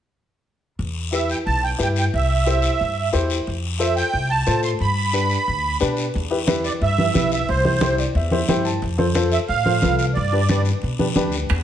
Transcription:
0.79 E2, long guiro
1.12 E4 G4 B4 E5, short guiro
1.30 G5, short guiro
1.46 B1 A5, long guiro
1.63 G5
1.78 G2 E4 G4 B4 G5, short guiro
1.96 G5, short guiro
2.14 C2 E5, long guiro
2.46 E4 G4 C5, short guiro
2.62 short guiro
2.80 G2, long guiro
3.12 E2 E4 G4 C5, short guiro
3.30 short guiro
3.47 F2, long guiro
3.79 F4 A4 C5 E5, short guiro
3.96 G5, short guiro
4.13 C2, long guiro
4.30 A5
4.46 A2 F4 A4 C5, short guiro
4.63 C6, short guiro
4.79 G2 B5, long guiro
5.13 D4 G4 B4, short guiro
5.30 short guiro
5.46 D2, long guiro
5.80 B2 D4 G4 B4, short guiro
5.97 short guiro
6.14 E2, high conga, long guiro
6.31 E4 G4 B4
6.47 E4 G4 B4, high conga, short guiro
6.64 D5, short guiro
6.81 G2 E5, high conga, long guiro
6.98 E4 G4 B4, high conga
7.14 B1 E4 G4 B4, high conga, short guiro
7.32 E5, short guiro
7.49 C2 C5, high conga, long guiro
7.64 E4 G4 C5, high conga
7.81 E4 G4 C5, high conga, short guiro
7.98 D5, short guiro
8.15 E2 E5, high conga, long guiro
8.31 E4 G4 C5 E5, high conga
8.49 G2 E4 G4 C5 G5, high conga, short guiro
8.65 A5, short guiro
8.82 F2, high conga, long guiro
8.98 F4 A4 C5, high conga
9.15 F4 A4 C5, high conga, short guiro
9.32 E5, short guiro
9.48 A2 F5, high conga, long guiro
9.65 F4 A4 C5, high conga
9.82 C2 F4 A4 B4, high conga, short guiro
9.97 F5, short guiro
10.14 G2 D5, high conga, long guiro
10.32 D4 G4 B4
10.49 D4 G4 B4, high conga, short guiro
10.65 short guiro
10.82 B2, high conga, long guiro
10.99 D4 G4 B4, high conga
11.16 D2 D4 G4 B4, high conga, short guiro
11.32 short guiro
11.49 E2, high conga, high timbale, long guiro

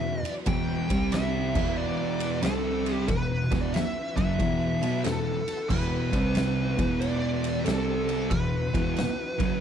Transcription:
Already playing: E2 B2 E3 F#3 B3 E5
0.25 ride
0.46 E2 B2 E3 G5, kick, ride
0.89 C2 C3 G3 C4 D4, kick, ride
1.12 E5, snare, ride
1.55 E2 B2 E3 B3 F#4, kick, crash
1.77 D5
2.20 ride
2.43 C2 C3 G3 C4 D4 A4, snare, ride
2.86 ride
2.94 G4
3.08 E2 B2 E3 B3 F#4 B4, kick, ride
3.51 E2 B2 E3, kick, snare, ride
3.61 D5
3.74 E5, snare, ride
4.16 F#2 C#3 F#3 E5, kick, ride
4.39 E2 B2 E3, kick, ride
4.82 B2 F#3 B3, ride
5.04 E2 B2 A4, snare, ride
5.48 ride
5.69 E2 B2 E3 B4, kick, crash
6.13 C2 C3 G3 C4 D4, kick, ride
6.35 snare, ride
6.78 E2 B2 E3 B3 F#4, kick, ride
7.00 D5, ride
7.44 ride
7.59 G4
7.65 C2 C3 G3 C4 D4 A4, snare, ride
8.09 ride
8.30 E2 B2 E3 F#3 B3 B4, kick, ride
8.74 E2 B2 E3, kick, ride
8.96 snare, ride
9.38 F#2 C#3 F#3, kick, ride

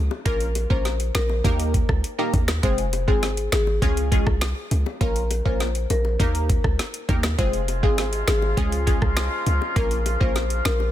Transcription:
0.11 high bongo
0.25 A#1 A#3 C#4 F4 A#4, kick, closed hi-hat
0.40 closed hi-hat
0.55 closed hi-hat, high bongo
0.70 A#1 A#3 C#4 F4 A#4 C5, kick
0.85 snare, closed hi-hat, high bongo
1.00 closed hi-hat
1.15 A#1 A#4, finger snap, snare, closed hi-hat, high bongo, low bongo
1.29 high bongo
1.44 D#2 A#3 D#4 G4 A#4, kick, closed hi-hat
1.60 closed hi-hat
1.74 kick, closed hi-hat
1.89 C#2, kick, cross-stick
2.04 closed hi-hat
2.19 A#3 D#4 G4 A#4
2.34 D#2, kick, closed hi-hat, low bongo
2.48 finger snap, snare, high bongo
2.63 F1 G#3 C4 F4 G#4 C5, kick, closed hi-hat
2.78 closed hi-hat
2.93 closed hi-hat, high bongo
3.08 G#1 G#3 C4 F4 G#4, kick
3.23 snare, closed hi-hat, high bongo
3.37 closed hi-hat
3.52 G#1 G#4, finger snap, snare, closed hi-hat, high bongo, low bongo
3.67 high bongo
3.82 C#2 G#3 C#4 F4 G#4, kick, closed hi-hat
3.97 closed hi-hat
4.12 G#3 C#4 F4 G#4, kick, closed hi-hat
4.27 C2, kick, cross-stick
4.41 finger snap, snare, closed hi-hat
4.71 C#2, closed hi-hat, low bongo
4.86 high bongo
5.01 A#1 A#3 C#4 F4 A#4, kick, closed hi-hat
5.16 closed hi-hat
5.31 closed hi-hat, high bongo
5.45 A#1 A#3 C#4 F4 A#4 C5, kick
5.60 snare, closed hi-hat, high bongo
5.75 closed hi-hat
5.90 A#1 A#4, closed hi-hat, high bongo, low bongo
6.05 high bongo
6.19 D#2 A#3 D#4 G4 A#4, kick, closed hi-hat
6.35 closed hi-hat
6.49 kick, closed hi-hat
6.64 C#2, kick, cross-stick
6.79 snare, closed hi-hat
6.94 closed hi-hat
7.09 D#2 A#3 D#4 G4 A#4, kick, closed hi-hat, low bongo
7.23 finger snap, snare, high bongo
7.38 F1 C3 F3 G#3 C4 F4 G#4 C5, kick, closed hi-hat
7.53 closed hi-hat
7.68 closed hi-hat, high bongo
7.83 G#1 G#3 C4 F4 G#4, kick
7.98 snare, closed hi-hat, high bongo
8.13 closed hi-hat
8.28 G#1 G#4, finger snap, snare, closed hi-hat, high bongo, low bongo
8.42 high bongo
8.57 C#2 C#3 G#3 C#4 F4 G#4, kick, closed hi-hat
8.72 closed hi-hat
8.87 G#3 C#4 F4 G#4, kick, closed hi-hat
9.02 C2, kick, cross-stick
9.17 finger snap, snare, closed hi-hat
9.46 C#2, closed hi-hat, low bongo
9.62 high bongo
9.76 A#1 A#3 C#4 F4 A#4, kick, closed hi-hat
9.91 closed hi-hat
10.06 closed hi-hat, high bongo
10.20 A#1 A#3 C#4 F4 A#4 C5, kick
10.35 snare, closed hi-hat, high bongo
10.50 closed hi-hat
10.65 A#1 A#4, finger snap, snare, closed hi-hat, high bongo, low bongo
10.80 high bongo

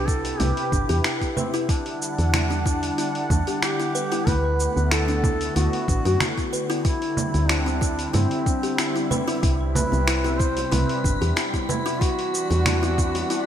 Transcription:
Already playing: C2 C3 E4 G4 B4
0.07 E4 A4, kick, shaker
0.25 open hi-hat, shaker
0.39 C2 E4 G4, open hi-hat, low conga, shaker
0.57 open hi-hat
0.72 G1 D4, kick, shaker
0.89 E2 G4, open hi-hat, shaker
1.04 E4, finger snap, open hi-hat, shaker
1.21 E4, kick, open hi-hat, shaker
1.37 C4 B4, low conga, shaker
1.54 E4, open hi-hat, shaker
1.69 D3 G3 D4 E4 F#5, kick, open hi-hat, shaker
1.86 open hi-hat
2.02 shaker
2.18 E2, open hi-hat, shaker
2.33 E4, finger snap, open hi-hat, low conga, shaker
2.50 D4, open hi-hat, shaker
2.66 E4, kick, shaker
2.83 open hi-hat, shaker
2.98 E4, open hi-hat, shaker
3.15 open hi-hat
3.30 E2 D4, kick, low conga, shaker
3.47 G4, open hi-hat, shaker
3.62 E4 G4, finger snap, open hi-hat, shaker
3.80 E4, open hi-hat, shaker
3.95 B4, shaker
4.12 E4, open hi-hat, shaker
4.27 D2 A3 B3 E4 B4, kick, open hi-hat, low conga, shaker
4.60 shaker
4.77 D2, shaker
4.85 B4
4.91 E4 A4, finger snap, open hi-hat, shaker
5.08 D4, open hi-hat, shaker
5.24 E4, kick, low conga, shaker
5.41 open hi-hat, shaker
5.56 D2 E4 F#4, open hi-hat, shaker
5.73 open hi-hat
5.88 A1 D4, kick, shaker
6.05 F#2 F#4, open hi-hat, shaker
6.20 E4, finger snap, open hi-hat, low conga, shaker
6.37 E4, kick, open hi-hat, shaker
6.53 B4, shaker
6.70 E4, open hi-hat, shaker
6.85 G3 C4 E4, kick, open hi-hat, shaker
7.02 open hi-hat
7.17 low conga, shaker
7.34 D2, open hi-hat, shaker
7.49 D4 E4, finger snap, open hi-hat, shaker
7.66 D4, open hi-hat, shaker
7.81 E4, kick, shaker
7.99 open hi-hat, shaker
8.13 G2 C4 E4, open hi-hat, low conga, shaker
8.31 open hi-hat
8.46 D4, kick, shaker
8.63 G4, open hi-hat, shaker
8.78 E4, finger snap, open hi-hat, shaker
8.96 E4, open hi-hat, shaker
9.11 B4, low conga, shaker
9.28 E4, open hi-hat, shaker
9.43 C2 C3 C4 E4 B5, kick, open hi-hat, shaker
9.75 B4, low conga, shaker
9.92 C2, high bongo, high conga, shaker
10.07 E4, finger snap, open hi-hat, shaker
10.24 E4, open hi-hat, high bongo, high conga, shaker
10.39 E4 C5, kick, shaker
10.57 open hi-hat, high bongo, shaker
10.72 C2 E4 B4, open hi-hat, low conga, shaker
10.89 open hi-hat
11.04 G1 D4, kick, high bongo, shaker
11.21 E2 G4, open hi-hat, shaker
11.36 E4, finger snap, open hi-hat, shaker
11.54 E4, kick, open hi-hat, high bongo, shaker
11.69 E4 B4, high conga, low conga, shaker
11.86 E4, open hi-hat, shaker
12.01 E3 D4 E4 F#4 F#5, kick, open hi-hat, shaker
12.19 open hi-hat
12.34 shaker
12.50 E2, open hi-hat, high bongo, high conga, shaker
12.66 E4, finger snap, open hi-hat, low conga, shaker
12.82 E4, open hi-hat, high bongo, high conga, shaker
12.98 E4, kick, shaker
13.15 open hi-hat, high bongo, shaker
13.30 E4, open hi-hat, shaker

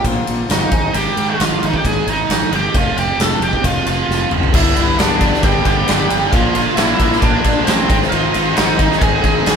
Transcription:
0.04 A#1 A#2 D3 A#3 C4 F4, kick, ride
0.27 A#1, ride
0.49 G1 D3 A#3 C4 D#4 F4 D#5, snare, ride
0.71 G#1 G#2 D#3 G#3 C4 D#4 G#4, kick, ride
0.94 G#1 G#2 D#3 G#3 G4 G5, ride
1.17 G#2, ride
1.30 F4 F5
1.40 G#1, snare, ride
1.63 G#1 D#4 D#5, ride
1.74 G4 G5, kick
1.85 G#1 G#4 G#5, kick, ride
2.07 G#1 D#4 D#5, ride
2.29 G#1, snare, ride
2.51 G1 D#3 G#3 G4, ride
2.55 G#2 G5
2.74 F1 F2 C3 F3 F4 F5, kick, ride
2.96 F1 G4 G5, ride
3.18 F1 A4 A5, snare, ride
3.40 F1 G4 G5, ride
3.53 kick
3.64 F1 F4 F5, kick, ride
3.86 F1 F4 F5, ride
4.09 F1, snare
4.31 F#1 F2 C3 F3, mid tom
4.43 floor tom
4.54 G1 G2 D3 G3 B3 D4 E4 G4 D5 E5 B5 D6, kick, crash
4.76 G1 G3 B3 D4, ride
4.98 G1 D3 G3 B3 D4 D5, snare, ride
5.20 G2 D3 G3 B3 D4, kick, ride
5.34 snare
5.42 G1 G2 D3 G3 B3 D4 G4 G5, kick, ride
5.65 G1 G2 D3 G3 B3 D4 G4 G5, kick, ride
5.88 G1 D3 G3 B3 D4, snare, ride
6.10 G1 G3 B3 D4, ride
6.32 A#1 A#2 D3 F3 A#3 D4 F4 F5 A#5 C6, kick, ride
6.55 F3 A#3 D4, ride
6.76 A#1 D3 F3 A#3 D4 E4 E5, snare, ride
6.99 A#1 A#2 D3 F3 A#3 D4, kick, ride
7.12 snare
7.20 A#1 A#2 D3 F3 A#3 D4 D5, kick, ride
7.25 D4
7.44 A#1 A#2 D3 F3 A#3 D4, kick, ride
7.64 A1 D3 F3 C4 C5, snare, ride
7.69 A#3 D4
7.89 G#1 G#2 D#3 G#3 C4 D#4 C5 G#5, kick, ride
8.02 snare
8.10 G#1 G#2 D#3 G#3 F4 F5, ride
8.15 C4 D#4
8.33 G#1 G#3 C4 D#4, ride
8.54 D#3 G#3 D#4 D#5, ride
8.58 G#1 C4 D#4, snare
8.78 G#2 D#3 G#3 C4 D#4, kick, ride
8.92 snare
8.99 G#1 G#2 D#3 G#4 G#5, kick, ride
9.03 G#3 C4 D#4
9.22 G#1 G#3 C4 D#4 G#5, kick, ride
9.26 G#2 D#3 G#4
9.46 G#1 D#3 G#3 C4 D#4, snare, ride

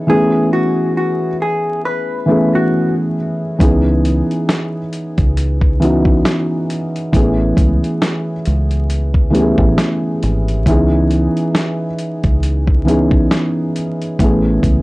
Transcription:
0.07 E3 A3 B3 C#4 G#4
0.53 F#4
0.97 F#4
1.42 G#4
1.85 B4
2.26 E3 A3 B3 C#4 G#4
2.55 F#4
3.58 C#2 E3 B3 C#4 D#4 G#4, kick, closed hi-hat
4.05 closed hi-hat
4.31 closed hi-hat
4.49 snare, closed hi-hat
4.93 closed hi-hat
5.18 C#2, kick, closed hi-hat
5.37 closed hi-hat
5.61 kick
5.80 E3 B3 C#4 D#4 F#4, closed hi-hat
6.05 kick
6.25 snare, closed hi-hat
6.70 closed hi-hat
6.96 closed hi-hat
7.12 A1 E3 A3 B3 C#4 G#4, kick, closed hi-hat
7.57 C#2, kick, closed hi-hat
7.84 closed hi-hat
8.02 snare, closed hi-hat
8.46 C#2, closed hi-hat
8.71 closed hi-hat
8.90 closed hi-hat
9.14 kick
9.30 E3 A3 B3 C#4 G4
9.35 closed hi-hat
9.40 G#4
9.58 A1, kick
9.78 snare, closed hi-hat
10.23 G#1, closed hi-hat
10.48 closed hi-hat
10.66 C#2 E3 B3 C#4 D#4, kick, closed hi-hat
10.71 G#4
11.11 closed hi-hat
11.37 closed hi-hat
11.55 snare, closed hi-hat
11.99 closed hi-hat
12.24 C#2, kick, closed hi-hat
12.43 closed hi-hat
12.67 kick
12.85 E3 B3 C#4 D#4 G#4, closed hi-hat
13.11 kick
13.31 snare, closed hi-hat
13.76 closed hi-hat
14.02 closed hi-hat
14.19 A1 E3 A3 B3 C#4, kick, closed hi-hat
14.23 G#4
14.63 C#2, kick, closed hi-hat

